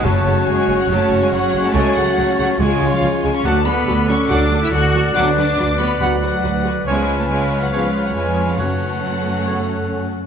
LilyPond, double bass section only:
\new Staff \with { instrumentName = "Double bass section" } { \clef bass \time 4/4 \key fis \minor \tempo 4 = 141 fis,,8 fis,,8 fis,,8 fis,,8 fis,,8 fis,,8 fis,,8 fis,,8 | cis,8 cis,8 cis,8 cis,8 cis,8 cis,8 cis,8 cis,8 | d,4 d,4 d,4 d,4 | d,4 d,4 d,4 d,4 |
cis,2. eis,4 | fis,2.~ fis,8 r8 | }